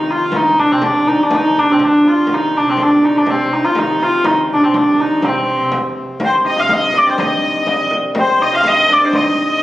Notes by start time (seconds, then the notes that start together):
Already playing: C3 D#3 D#4
0.11 F4
0.32 D#3, frame drum
0.36 D#4
0.57 D3 D4, frame drum
0.70 C3 C4
0.82 D3 D4, frame drum
1.07 D#3 D#4
1.23 D4
1.31 D#3, frame drum
1.35 D#4
1.56 D3 D4, frame drum
1.69 C3 C4
1.79 D3, frame drum
1.84 D4
2.03 F3
2.08 F4
2.27 C3 D#3, frame drum
2.34 D#4
2.53 D3, frame drum
2.57 D4
2.65 C3
2.69 C4
2.77 D3, frame drum
2.82 D4
3.01 D#3 D#4
3.15 D3 D4
3.25 C3, frame drum
3.30 C4
3.36 C3
3.44 C3
3.52 D#4, frame drum
3.63 F3 F4
3.75 D#3 D#4, frame drum
4.00 F3 F4
4.24 D#3 D#4, frame drum
4.50 D3 D4, frame drum
4.61 C3 C4
4.74 D3 D4, frame drum
4.98 D#3 D#4
5.22 C3 C4, frame drum
5.38 C3
5.56 C3
5.72 frame drum
6.20 C3 C4, frame drum
6.25 C5
6.44 D#4 D#5
6.56 F4 F5
6.69 D#4 D#5, frame drum
6.93 D4, frame drum
6.98 D5
7.06 C4 C5
7.17 D#4 D#5, frame drum
7.67 D4, frame drum
7.91 frame drum
8.15 C4, frame drum
8.20 C5
8.40 D#4 D#5
8.53 F4 F5
8.64 D#4 D#5, frame drum
8.88 D4, frame drum
8.93 D5
9.01 C4 C5
9.12 D#4 D#5, frame drum